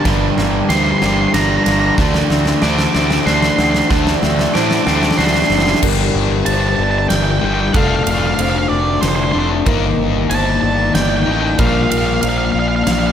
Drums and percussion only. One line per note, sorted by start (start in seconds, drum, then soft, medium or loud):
0.05 kick loud
0.05 snare medium
0.05 ride medium
0.38 snare medium
0.70 snare medium
0.70 ride medium
1.02 snare medium
1.34 snare medium
1.34 ride medium
1.66 snare medium
1.66 ride medium
1.98 kick loud
1.98 snare medium
2.14 snare medium
2.30 snare medium
2.46 snare medium
2.62 snare loud
2.79 snare loud
2.95 snare loud
3.11 snare loud
3.27 snare loud
3.43 snare loud
3.59 snare loud
3.75 snare loud
3.90 kick loud
3.90 snare loud
4.07 snare loud
4.23 snare loud
4.39 snare loud
4.55 snare loud
4.71 snare loud
4.87 snare loud
5.03 snare loud
5.11 snare loud
5.19 snare loud
5.26 snare loud
5.34 snare loud
5.42 snare loud
5.50 snare loud
5.59 snare loud
5.67 snare loud
5.75 snare loud
5.83 kick loud
5.83 crash loud
6.46 ride medium
7.10 snare loud
7.10 ride medium
7.74 kick loud
7.74 ride medium
8.07 ride medium
8.39 ride medium
9.03 snare medium
9.03 ride medium
9.66 kick loud
9.66 ride medium
10.31 ride medium
10.95 snare medium
10.95 ride medium
11.59 kick loud
11.59 ride medium
11.91 ride medium
12.23 ride medium
12.87 snare loud
12.87 ride medium